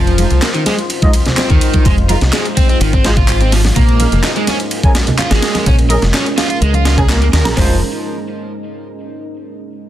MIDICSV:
0, 0, Header, 1, 6, 480
1, 0, Start_track
1, 0, Key_signature, -4, "minor"
1, 0, Tempo, 476190
1, 1872, Time_signature, 4, 2, 24, 8
1, 9972, End_track
2, 0, Start_track
2, 0, Title_t, "Brass ensemble"
2, 0, Program_c, 0, 61
2, 188, Note_on_c, 0, 56, 78
2, 188, Note_on_c, 0, 63, 69
2, 188, Note_on_c, 0, 65, 69
2, 188, Note_on_c, 0, 72, 84
2, 250, Note_off_c, 0, 56, 0
2, 250, Note_off_c, 0, 63, 0
2, 250, Note_off_c, 0, 65, 0
2, 250, Note_off_c, 0, 72, 0
2, 1033, Note_on_c, 0, 65, 74
2, 1034, Note_on_c, 0, 56, 81
2, 1034, Note_on_c, 0, 63, 72
2, 1034, Note_on_c, 0, 75, 89
2, 1125, Note_off_c, 0, 56, 0
2, 1125, Note_off_c, 0, 63, 0
2, 1125, Note_off_c, 0, 65, 0
2, 1125, Note_off_c, 0, 75, 0
2, 2110, Note_on_c, 0, 63, 89
2, 2110, Note_on_c, 0, 65, 90
2, 2110, Note_on_c, 0, 70, 105
2, 2111, Note_on_c, 0, 56, 99
2, 2171, Note_off_c, 0, 56, 0
2, 2171, Note_off_c, 0, 63, 0
2, 2171, Note_off_c, 0, 65, 0
2, 2171, Note_off_c, 0, 70, 0
2, 3071, Note_on_c, 0, 56, 91
2, 3071, Note_on_c, 0, 63, 85
2, 3071, Note_on_c, 0, 65, 88
2, 3071, Note_on_c, 0, 72, 101
2, 3131, Note_off_c, 0, 56, 0
2, 3131, Note_off_c, 0, 63, 0
2, 3131, Note_off_c, 0, 65, 0
2, 3132, Note_off_c, 0, 72, 0
2, 4031, Note_on_c, 0, 61, 76
2, 4032, Note_on_c, 0, 68, 71
2, 4032, Note_on_c, 0, 70, 70
2, 4032, Note_on_c, 0, 77, 86
2, 4092, Note_off_c, 0, 61, 0
2, 4092, Note_off_c, 0, 68, 0
2, 4092, Note_off_c, 0, 70, 0
2, 4092, Note_off_c, 0, 77, 0
2, 4873, Note_on_c, 0, 61, 82
2, 4873, Note_on_c, 0, 80, 90
2, 4874, Note_on_c, 0, 68, 74
2, 4874, Note_on_c, 0, 70, 76
2, 4965, Note_off_c, 0, 61, 0
2, 4965, Note_off_c, 0, 68, 0
2, 4965, Note_off_c, 0, 70, 0
2, 4965, Note_off_c, 0, 80, 0
2, 5950, Note_on_c, 0, 61, 98
2, 5951, Note_on_c, 0, 68, 90
2, 5951, Note_on_c, 0, 75, 106
2, 5952, Note_on_c, 0, 70, 92
2, 6011, Note_off_c, 0, 61, 0
2, 6012, Note_off_c, 0, 68, 0
2, 6012, Note_off_c, 0, 70, 0
2, 6012, Note_off_c, 0, 75, 0
2, 7032, Note_on_c, 0, 70, 88
2, 7032, Note_on_c, 0, 80, 106
2, 7033, Note_on_c, 0, 61, 95
2, 7033, Note_on_c, 0, 68, 89
2, 7090, Note_off_c, 0, 70, 0
2, 7090, Note_off_c, 0, 80, 0
2, 7091, Note_off_c, 0, 61, 0
2, 7091, Note_off_c, 0, 68, 0
2, 7511, Note_on_c, 0, 61, 101
2, 7511, Note_on_c, 0, 70, 93
2, 7512, Note_on_c, 0, 68, 89
2, 7512, Note_on_c, 0, 82, 107
2, 7570, Note_off_c, 0, 61, 0
2, 7570, Note_off_c, 0, 68, 0
2, 7570, Note_off_c, 0, 70, 0
2, 7570, Note_off_c, 0, 82, 0
2, 7628, Note_on_c, 0, 56, 90
2, 7628, Note_on_c, 0, 63, 82
2, 7628, Note_on_c, 0, 65, 82
2, 7628, Note_on_c, 0, 72, 103
2, 7810, Note_off_c, 0, 56, 0
2, 7810, Note_off_c, 0, 63, 0
2, 7810, Note_off_c, 0, 65, 0
2, 7810, Note_off_c, 0, 72, 0
2, 9972, End_track
3, 0, Start_track
3, 0, Title_t, "Ambient pad"
3, 0, Program_c, 1, 92
3, 0, Note_on_c, 1, 56, 86
3, 0, Note_on_c, 1, 63, 78
3, 0, Note_on_c, 1, 65, 78
3, 0, Note_on_c, 1, 72, 93
3, 3751, Note_off_c, 1, 63, 0
3, 3755, Note_off_c, 1, 72, 0
3, 3795, Note_on_c, 1, 61, 78
3, 3795, Note_on_c, 1, 70, 94
3, 5672, Note_off_c, 1, 65, 0
3, 5711, Note_on_c, 1, 63, 76
3, 7588, Note_off_c, 1, 56, 0
3, 7595, Note_off_c, 1, 61, 0
3, 7595, Note_off_c, 1, 70, 0
3, 7612, Note_off_c, 1, 63, 0
3, 9972, End_track
4, 0, Start_track
4, 0, Title_t, "Overdriven electric guitar"
4, 0, Program_c, 2, 29
4, 0, Note_on_c, 2, 53, 83
4, 420, Note_off_c, 2, 53, 0
4, 431, Note_on_c, 2, 58, 83
4, 482, Note_off_c, 2, 58, 0
4, 553, Note_on_c, 2, 51, 105
4, 633, Note_off_c, 2, 51, 0
4, 669, Note_on_c, 2, 56, 100
4, 755, Note_off_c, 2, 56, 0
4, 1389, Note_on_c, 2, 60, 84
4, 1502, Note_off_c, 2, 60, 0
4, 1516, Note_on_c, 2, 51, 102
4, 1860, Note_off_c, 2, 51, 0
4, 1874, Note_on_c, 2, 56, 83
4, 1957, Note_off_c, 2, 56, 0
4, 2114, Note_on_c, 2, 65, 77
4, 2197, Note_off_c, 2, 65, 0
4, 2351, Note_on_c, 2, 56, 83
4, 2469, Note_off_c, 2, 56, 0
4, 2590, Note_on_c, 2, 60, 77
4, 2702, Note_off_c, 2, 60, 0
4, 2717, Note_on_c, 2, 60, 77
4, 2795, Note_off_c, 2, 60, 0
4, 2833, Note_on_c, 2, 51, 83
4, 2944, Note_off_c, 2, 51, 0
4, 2958, Note_on_c, 2, 60, 105
4, 3067, Note_off_c, 2, 60, 0
4, 3072, Note_on_c, 2, 56, 104
4, 3156, Note_off_c, 2, 56, 0
4, 3197, Note_on_c, 2, 65, 77
4, 3424, Note_off_c, 2, 65, 0
4, 3439, Note_on_c, 2, 60, 77
4, 3548, Note_off_c, 2, 60, 0
4, 3553, Note_on_c, 2, 53, 80
4, 3636, Note_off_c, 2, 53, 0
4, 3793, Note_on_c, 2, 58, 82
4, 4261, Note_off_c, 2, 58, 0
4, 4274, Note_on_c, 2, 63, 84
4, 4323, Note_off_c, 2, 63, 0
4, 4397, Note_on_c, 2, 56, 107
4, 4475, Note_off_c, 2, 56, 0
4, 4513, Note_on_c, 2, 61, 102
4, 4596, Note_off_c, 2, 61, 0
4, 5230, Note_on_c, 2, 65, 84
4, 5343, Note_off_c, 2, 65, 0
4, 5356, Note_on_c, 2, 56, 105
4, 5701, Note_off_c, 2, 56, 0
4, 5711, Note_on_c, 2, 61, 83
4, 5795, Note_off_c, 2, 61, 0
4, 5949, Note_on_c, 2, 70, 80
4, 6034, Note_off_c, 2, 70, 0
4, 6193, Note_on_c, 2, 61, 83
4, 6310, Note_off_c, 2, 61, 0
4, 6429, Note_on_c, 2, 65, 80
4, 6542, Note_off_c, 2, 65, 0
4, 6554, Note_on_c, 2, 65, 76
4, 6634, Note_off_c, 2, 65, 0
4, 6671, Note_on_c, 2, 56, 84
4, 6783, Note_off_c, 2, 56, 0
4, 6795, Note_on_c, 2, 65, 106
4, 6903, Note_off_c, 2, 65, 0
4, 6915, Note_on_c, 2, 65, 77
4, 7031, Note_off_c, 2, 65, 0
4, 7037, Note_on_c, 2, 68, 78
4, 7147, Note_off_c, 2, 68, 0
4, 7151, Note_on_c, 2, 58, 86
4, 7236, Note_off_c, 2, 58, 0
4, 7274, Note_on_c, 2, 58, 80
4, 7322, Note_off_c, 2, 58, 0
4, 7395, Note_on_c, 2, 70, 78
4, 7511, Note_off_c, 2, 70, 0
4, 7634, Note_on_c, 2, 53, 92
4, 7857, Note_off_c, 2, 53, 0
4, 9972, End_track
5, 0, Start_track
5, 0, Title_t, "Fingered electric bass"
5, 0, Program_c, 3, 33
5, 0, Note_on_c, 3, 29, 98
5, 246, Note_off_c, 3, 29, 0
5, 311, Note_on_c, 3, 36, 91
5, 390, Note_off_c, 3, 36, 0
5, 1515, Note_on_c, 3, 39, 83
5, 1592, Note_off_c, 3, 39, 0
5, 1871, Note_on_c, 3, 29, 99
5, 2167, Note_off_c, 3, 29, 0
5, 2232, Note_on_c, 3, 36, 88
5, 2310, Note_off_c, 3, 36, 0
5, 2830, Note_on_c, 3, 32, 100
5, 3727, Note_off_c, 3, 32, 0
5, 3791, Note_on_c, 3, 34, 104
5, 4087, Note_off_c, 3, 34, 0
5, 4152, Note_on_c, 3, 29, 88
5, 4230, Note_off_c, 3, 29, 0
5, 5355, Note_on_c, 3, 32, 83
5, 5432, Note_off_c, 3, 32, 0
5, 5710, Note_on_c, 3, 34, 103
5, 6006, Note_off_c, 3, 34, 0
5, 6074, Note_on_c, 3, 29, 91
5, 6151, Note_off_c, 3, 29, 0
5, 6670, Note_on_c, 3, 37, 101
5, 7385, Note_off_c, 3, 37, 0
5, 7391, Note_on_c, 3, 39, 90
5, 7514, Note_off_c, 3, 39, 0
5, 7514, Note_on_c, 3, 34, 97
5, 7591, Note_off_c, 3, 34, 0
5, 7631, Note_on_c, 3, 29, 100
5, 7855, Note_off_c, 3, 29, 0
5, 9972, End_track
6, 0, Start_track
6, 0, Title_t, "Drums"
6, 72, Note_on_c, 9, 51, 46
6, 173, Note_off_c, 9, 51, 0
6, 183, Note_on_c, 9, 42, 72
6, 183, Note_on_c, 9, 51, 80
6, 188, Note_on_c, 9, 63, 98
6, 189, Note_off_c, 9, 51, 0
6, 189, Note_on_c, 9, 51, 68
6, 284, Note_off_c, 9, 42, 0
6, 289, Note_off_c, 9, 63, 0
6, 290, Note_off_c, 9, 51, 0
6, 307, Note_on_c, 9, 42, 30
6, 309, Note_on_c, 9, 64, 79
6, 408, Note_off_c, 9, 42, 0
6, 410, Note_off_c, 9, 64, 0
6, 425, Note_on_c, 9, 39, 108
6, 425, Note_on_c, 9, 42, 43
6, 428, Note_on_c, 9, 38, 116
6, 428, Note_on_c, 9, 51, 90
6, 525, Note_off_c, 9, 39, 0
6, 525, Note_off_c, 9, 42, 0
6, 529, Note_off_c, 9, 38, 0
6, 529, Note_off_c, 9, 51, 0
6, 548, Note_on_c, 9, 42, 29
6, 649, Note_off_c, 9, 42, 0
6, 666, Note_on_c, 9, 42, 74
6, 666, Note_on_c, 9, 51, 82
6, 668, Note_on_c, 9, 63, 64
6, 669, Note_off_c, 9, 51, 0
6, 669, Note_on_c, 9, 38, 51
6, 669, Note_on_c, 9, 51, 68
6, 767, Note_off_c, 9, 42, 0
6, 769, Note_off_c, 9, 63, 0
6, 770, Note_off_c, 9, 38, 0
6, 770, Note_off_c, 9, 51, 0
6, 792, Note_on_c, 9, 42, 31
6, 892, Note_off_c, 9, 42, 0
6, 905, Note_on_c, 9, 42, 42
6, 909, Note_on_c, 9, 51, 87
6, 1006, Note_off_c, 9, 42, 0
6, 1010, Note_off_c, 9, 51, 0
6, 1027, Note_on_c, 9, 63, 83
6, 1030, Note_on_c, 9, 42, 29
6, 1034, Note_on_c, 9, 36, 97
6, 1128, Note_off_c, 9, 63, 0
6, 1131, Note_off_c, 9, 42, 0
6, 1134, Note_off_c, 9, 36, 0
6, 1143, Note_on_c, 9, 42, 69
6, 1143, Note_on_c, 9, 51, 81
6, 1150, Note_off_c, 9, 51, 0
6, 1150, Note_on_c, 9, 51, 71
6, 1244, Note_off_c, 9, 42, 0
6, 1251, Note_off_c, 9, 51, 0
6, 1266, Note_on_c, 9, 42, 31
6, 1274, Note_on_c, 9, 38, 37
6, 1278, Note_on_c, 9, 64, 86
6, 1367, Note_off_c, 9, 42, 0
6, 1375, Note_off_c, 9, 38, 0
6, 1379, Note_off_c, 9, 64, 0
6, 1384, Note_on_c, 9, 39, 105
6, 1384, Note_on_c, 9, 42, 42
6, 1385, Note_on_c, 9, 63, 63
6, 1391, Note_on_c, 9, 38, 116
6, 1391, Note_on_c, 9, 51, 90
6, 1484, Note_off_c, 9, 39, 0
6, 1484, Note_off_c, 9, 42, 0
6, 1485, Note_off_c, 9, 63, 0
6, 1492, Note_off_c, 9, 38, 0
6, 1492, Note_off_c, 9, 51, 0
6, 1509, Note_on_c, 9, 42, 29
6, 1515, Note_on_c, 9, 36, 101
6, 1610, Note_off_c, 9, 42, 0
6, 1615, Note_off_c, 9, 36, 0
6, 1626, Note_on_c, 9, 42, 71
6, 1626, Note_on_c, 9, 51, 81
6, 1630, Note_off_c, 9, 51, 0
6, 1630, Note_on_c, 9, 51, 73
6, 1727, Note_off_c, 9, 42, 0
6, 1731, Note_off_c, 9, 51, 0
6, 1749, Note_on_c, 9, 42, 31
6, 1755, Note_on_c, 9, 36, 97
6, 1759, Note_on_c, 9, 63, 84
6, 1850, Note_off_c, 9, 42, 0
6, 1856, Note_off_c, 9, 36, 0
6, 1859, Note_off_c, 9, 63, 0
6, 1866, Note_on_c, 9, 42, 40
6, 1870, Note_on_c, 9, 64, 78
6, 1871, Note_on_c, 9, 36, 112
6, 1872, Note_on_c, 9, 51, 90
6, 1967, Note_off_c, 9, 42, 0
6, 1971, Note_off_c, 9, 64, 0
6, 1972, Note_off_c, 9, 36, 0
6, 1973, Note_off_c, 9, 51, 0
6, 1995, Note_on_c, 9, 51, 44
6, 2096, Note_off_c, 9, 51, 0
6, 2108, Note_on_c, 9, 42, 70
6, 2108, Note_on_c, 9, 51, 84
6, 2112, Note_off_c, 9, 51, 0
6, 2112, Note_on_c, 9, 51, 70
6, 2113, Note_on_c, 9, 63, 84
6, 2209, Note_off_c, 9, 42, 0
6, 2213, Note_off_c, 9, 51, 0
6, 2214, Note_off_c, 9, 63, 0
6, 2231, Note_on_c, 9, 42, 31
6, 2236, Note_on_c, 9, 64, 75
6, 2237, Note_on_c, 9, 38, 49
6, 2332, Note_off_c, 9, 42, 0
6, 2337, Note_off_c, 9, 64, 0
6, 2338, Note_off_c, 9, 38, 0
6, 2347, Note_on_c, 9, 39, 104
6, 2347, Note_on_c, 9, 42, 41
6, 2351, Note_on_c, 9, 38, 119
6, 2351, Note_on_c, 9, 51, 89
6, 2448, Note_off_c, 9, 39, 0
6, 2448, Note_off_c, 9, 42, 0
6, 2452, Note_off_c, 9, 38, 0
6, 2452, Note_off_c, 9, 51, 0
6, 2475, Note_on_c, 9, 42, 30
6, 2575, Note_off_c, 9, 42, 0
6, 2590, Note_on_c, 9, 42, 71
6, 2590, Note_on_c, 9, 51, 87
6, 2590, Note_on_c, 9, 63, 61
6, 2591, Note_off_c, 9, 51, 0
6, 2591, Note_on_c, 9, 51, 72
6, 2592, Note_on_c, 9, 36, 98
6, 2691, Note_off_c, 9, 42, 0
6, 2691, Note_off_c, 9, 63, 0
6, 2692, Note_off_c, 9, 36, 0
6, 2692, Note_off_c, 9, 51, 0
6, 2715, Note_on_c, 9, 42, 31
6, 2816, Note_off_c, 9, 42, 0
6, 2830, Note_on_c, 9, 42, 43
6, 2832, Note_on_c, 9, 51, 90
6, 2931, Note_off_c, 9, 42, 0
6, 2933, Note_off_c, 9, 51, 0
6, 2955, Note_on_c, 9, 42, 28
6, 2956, Note_on_c, 9, 36, 100
6, 2956, Note_on_c, 9, 63, 87
6, 3056, Note_off_c, 9, 36, 0
6, 3056, Note_off_c, 9, 42, 0
6, 3057, Note_off_c, 9, 63, 0
6, 3069, Note_on_c, 9, 42, 70
6, 3069, Note_on_c, 9, 51, 84
6, 3070, Note_off_c, 9, 51, 0
6, 3070, Note_on_c, 9, 38, 118
6, 3070, Note_on_c, 9, 51, 70
6, 3170, Note_off_c, 9, 42, 0
6, 3171, Note_off_c, 9, 38, 0
6, 3171, Note_off_c, 9, 51, 0
6, 3188, Note_on_c, 9, 64, 83
6, 3193, Note_on_c, 9, 42, 31
6, 3195, Note_on_c, 9, 36, 93
6, 3289, Note_off_c, 9, 64, 0
6, 3294, Note_off_c, 9, 42, 0
6, 3296, Note_off_c, 9, 36, 0
6, 3309, Note_on_c, 9, 39, 109
6, 3309, Note_on_c, 9, 42, 42
6, 3311, Note_on_c, 9, 63, 61
6, 3312, Note_on_c, 9, 51, 90
6, 3409, Note_off_c, 9, 39, 0
6, 3409, Note_off_c, 9, 42, 0
6, 3412, Note_off_c, 9, 63, 0
6, 3413, Note_off_c, 9, 51, 0
6, 3433, Note_on_c, 9, 42, 29
6, 3534, Note_off_c, 9, 42, 0
6, 3551, Note_on_c, 9, 42, 72
6, 3551, Note_on_c, 9, 51, 85
6, 3554, Note_on_c, 9, 38, 52
6, 3554, Note_on_c, 9, 46, 85
6, 3652, Note_off_c, 9, 42, 0
6, 3652, Note_off_c, 9, 51, 0
6, 3655, Note_off_c, 9, 38, 0
6, 3655, Note_off_c, 9, 46, 0
6, 3675, Note_on_c, 9, 42, 31
6, 3676, Note_on_c, 9, 38, 53
6, 3679, Note_on_c, 9, 63, 94
6, 3776, Note_off_c, 9, 42, 0
6, 3777, Note_off_c, 9, 38, 0
6, 3780, Note_off_c, 9, 63, 0
6, 3791, Note_on_c, 9, 42, 41
6, 3791, Note_on_c, 9, 51, 92
6, 3792, Note_on_c, 9, 36, 114
6, 3798, Note_on_c, 9, 64, 83
6, 3892, Note_off_c, 9, 42, 0
6, 3892, Note_off_c, 9, 51, 0
6, 3893, Note_off_c, 9, 36, 0
6, 3898, Note_off_c, 9, 64, 0
6, 3917, Note_on_c, 9, 51, 45
6, 4018, Note_off_c, 9, 51, 0
6, 4029, Note_on_c, 9, 42, 73
6, 4029, Note_on_c, 9, 51, 86
6, 4032, Note_off_c, 9, 51, 0
6, 4032, Note_on_c, 9, 51, 69
6, 4032, Note_on_c, 9, 63, 94
6, 4130, Note_off_c, 9, 42, 0
6, 4133, Note_off_c, 9, 51, 0
6, 4133, Note_off_c, 9, 63, 0
6, 4155, Note_on_c, 9, 42, 32
6, 4161, Note_on_c, 9, 64, 90
6, 4256, Note_off_c, 9, 42, 0
6, 4261, Note_off_c, 9, 64, 0
6, 4270, Note_on_c, 9, 38, 120
6, 4270, Note_on_c, 9, 51, 90
6, 4271, Note_on_c, 9, 39, 104
6, 4271, Note_on_c, 9, 42, 43
6, 4371, Note_off_c, 9, 38, 0
6, 4371, Note_off_c, 9, 39, 0
6, 4371, Note_off_c, 9, 42, 0
6, 4371, Note_off_c, 9, 51, 0
6, 4395, Note_on_c, 9, 42, 31
6, 4496, Note_off_c, 9, 42, 0
6, 4509, Note_on_c, 9, 42, 73
6, 4509, Note_on_c, 9, 51, 88
6, 4510, Note_off_c, 9, 51, 0
6, 4510, Note_on_c, 9, 38, 50
6, 4510, Note_on_c, 9, 51, 69
6, 4515, Note_on_c, 9, 63, 63
6, 4610, Note_off_c, 9, 42, 0
6, 4611, Note_off_c, 9, 38, 0
6, 4611, Note_off_c, 9, 51, 0
6, 4616, Note_off_c, 9, 63, 0
6, 4635, Note_on_c, 9, 42, 32
6, 4736, Note_off_c, 9, 42, 0
6, 4749, Note_on_c, 9, 51, 89
6, 4750, Note_on_c, 9, 42, 44
6, 4850, Note_off_c, 9, 42, 0
6, 4850, Note_off_c, 9, 51, 0
6, 4873, Note_on_c, 9, 36, 98
6, 4874, Note_on_c, 9, 63, 85
6, 4875, Note_on_c, 9, 42, 29
6, 4974, Note_off_c, 9, 36, 0
6, 4974, Note_off_c, 9, 63, 0
6, 4976, Note_off_c, 9, 42, 0
6, 4989, Note_on_c, 9, 38, 106
6, 4989, Note_on_c, 9, 42, 72
6, 4989, Note_on_c, 9, 51, 81
6, 5090, Note_off_c, 9, 38, 0
6, 5090, Note_off_c, 9, 42, 0
6, 5090, Note_off_c, 9, 51, 0
6, 5111, Note_on_c, 9, 42, 32
6, 5120, Note_on_c, 9, 64, 99
6, 5212, Note_off_c, 9, 42, 0
6, 5221, Note_off_c, 9, 64, 0
6, 5228, Note_on_c, 9, 39, 105
6, 5228, Note_on_c, 9, 42, 43
6, 5229, Note_on_c, 9, 38, 47
6, 5229, Note_on_c, 9, 51, 63
6, 5229, Note_on_c, 9, 63, 67
6, 5329, Note_off_c, 9, 39, 0
6, 5329, Note_off_c, 9, 42, 0
6, 5330, Note_off_c, 9, 38, 0
6, 5330, Note_off_c, 9, 51, 0
6, 5330, Note_off_c, 9, 63, 0
6, 5351, Note_on_c, 9, 38, 113
6, 5351, Note_on_c, 9, 51, 84
6, 5353, Note_on_c, 9, 42, 29
6, 5452, Note_off_c, 9, 38, 0
6, 5452, Note_off_c, 9, 51, 0
6, 5454, Note_off_c, 9, 42, 0
6, 5468, Note_on_c, 9, 38, 106
6, 5468, Note_on_c, 9, 51, 82
6, 5469, Note_off_c, 9, 51, 0
6, 5469, Note_on_c, 9, 42, 75
6, 5469, Note_on_c, 9, 51, 88
6, 5569, Note_off_c, 9, 38, 0
6, 5570, Note_off_c, 9, 42, 0
6, 5570, Note_off_c, 9, 51, 0
6, 5594, Note_on_c, 9, 38, 46
6, 5594, Note_on_c, 9, 51, 65
6, 5594, Note_on_c, 9, 63, 95
6, 5595, Note_on_c, 9, 42, 31
6, 5695, Note_off_c, 9, 38, 0
6, 5695, Note_off_c, 9, 51, 0
6, 5695, Note_off_c, 9, 63, 0
6, 5696, Note_off_c, 9, 42, 0
6, 5709, Note_on_c, 9, 42, 43
6, 5709, Note_on_c, 9, 51, 90
6, 5710, Note_on_c, 9, 36, 114
6, 5714, Note_on_c, 9, 64, 86
6, 5810, Note_off_c, 9, 42, 0
6, 5810, Note_off_c, 9, 51, 0
6, 5811, Note_off_c, 9, 36, 0
6, 5814, Note_off_c, 9, 64, 0
6, 5832, Note_on_c, 9, 42, 31
6, 5833, Note_on_c, 9, 51, 45
6, 5933, Note_off_c, 9, 42, 0
6, 5934, Note_off_c, 9, 51, 0
6, 5946, Note_on_c, 9, 63, 88
6, 5947, Note_on_c, 9, 42, 76
6, 5947, Note_on_c, 9, 51, 91
6, 5949, Note_off_c, 9, 51, 0
6, 5949, Note_on_c, 9, 51, 67
6, 6046, Note_off_c, 9, 63, 0
6, 6048, Note_off_c, 9, 42, 0
6, 6050, Note_off_c, 9, 51, 0
6, 6067, Note_on_c, 9, 64, 97
6, 6071, Note_on_c, 9, 42, 32
6, 6074, Note_on_c, 9, 38, 50
6, 6168, Note_off_c, 9, 64, 0
6, 6172, Note_off_c, 9, 42, 0
6, 6174, Note_off_c, 9, 38, 0
6, 6189, Note_on_c, 9, 38, 121
6, 6189, Note_on_c, 9, 51, 88
6, 6190, Note_on_c, 9, 39, 107
6, 6190, Note_on_c, 9, 42, 44
6, 6290, Note_off_c, 9, 38, 0
6, 6290, Note_off_c, 9, 51, 0
6, 6291, Note_off_c, 9, 39, 0
6, 6291, Note_off_c, 9, 42, 0
6, 6313, Note_on_c, 9, 42, 31
6, 6414, Note_off_c, 9, 42, 0
6, 6428, Note_on_c, 9, 38, 108
6, 6428, Note_on_c, 9, 51, 81
6, 6430, Note_off_c, 9, 51, 0
6, 6430, Note_on_c, 9, 42, 77
6, 6430, Note_on_c, 9, 51, 93
6, 6436, Note_on_c, 9, 63, 58
6, 6529, Note_off_c, 9, 38, 0
6, 6531, Note_off_c, 9, 42, 0
6, 6531, Note_off_c, 9, 51, 0
6, 6537, Note_off_c, 9, 63, 0
6, 6553, Note_on_c, 9, 42, 33
6, 6654, Note_off_c, 9, 42, 0
6, 6670, Note_on_c, 9, 42, 45
6, 6771, Note_off_c, 9, 42, 0
6, 6790, Note_on_c, 9, 63, 88
6, 6795, Note_on_c, 9, 42, 30
6, 6891, Note_off_c, 9, 63, 0
6, 6896, Note_off_c, 9, 42, 0
6, 6909, Note_on_c, 9, 38, 120
6, 6909, Note_on_c, 9, 51, 73
6, 6910, Note_off_c, 9, 51, 0
6, 6910, Note_on_c, 9, 42, 75
6, 6910, Note_on_c, 9, 51, 90
6, 7010, Note_off_c, 9, 38, 0
6, 7011, Note_off_c, 9, 42, 0
6, 7011, Note_off_c, 9, 51, 0
6, 7032, Note_on_c, 9, 64, 95
6, 7035, Note_on_c, 9, 36, 98
6, 7036, Note_on_c, 9, 42, 33
6, 7133, Note_off_c, 9, 64, 0
6, 7135, Note_off_c, 9, 36, 0
6, 7137, Note_off_c, 9, 42, 0
6, 7148, Note_on_c, 9, 63, 64
6, 7151, Note_on_c, 9, 38, 105
6, 7151, Note_on_c, 9, 51, 80
6, 7152, Note_on_c, 9, 39, 105
6, 7152, Note_on_c, 9, 42, 44
6, 7249, Note_off_c, 9, 63, 0
6, 7251, Note_off_c, 9, 38, 0
6, 7251, Note_off_c, 9, 51, 0
6, 7253, Note_off_c, 9, 39, 0
6, 7253, Note_off_c, 9, 42, 0
6, 7276, Note_on_c, 9, 42, 31
6, 7377, Note_off_c, 9, 42, 0
6, 7392, Note_on_c, 9, 38, 108
6, 7392, Note_on_c, 9, 51, 82
6, 7394, Note_off_c, 9, 51, 0
6, 7394, Note_on_c, 9, 42, 78
6, 7394, Note_on_c, 9, 51, 89
6, 7493, Note_off_c, 9, 38, 0
6, 7494, Note_off_c, 9, 42, 0
6, 7494, Note_off_c, 9, 51, 0
6, 7514, Note_on_c, 9, 38, 105
6, 7514, Note_on_c, 9, 51, 82
6, 7515, Note_on_c, 9, 63, 91
6, 7519, Note_on_c, 9, 42, 33
6, 7614, Note_off_c, 9, 38, 0
6, 7614, Note_off_c, 9, 51, 0
6, 7616, Note_off_c, 9, 63, 0
6, 7620, Note_off_c, 9, 42, 0
6, 7631, Note_on_c, 9, 36, 110
6, 7631, Note_on_c, 9, 38, 108
6, 7631, Note_on_c, 9, 46, 91
6, 7732, Note_off_c, 9, 36, 0
6, 7732, Note_off_c, 9, 38, 0
6, 7732, Note_off_c, 9, 46, 0
6, 9972, End_track
0, 0, End_of_file